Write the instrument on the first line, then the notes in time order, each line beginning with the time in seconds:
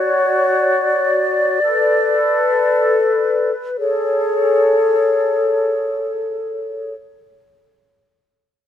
flute section
Already playing: F#4 C#5 D5
1.62 A4 B4
3.78 G#4 A4 C#5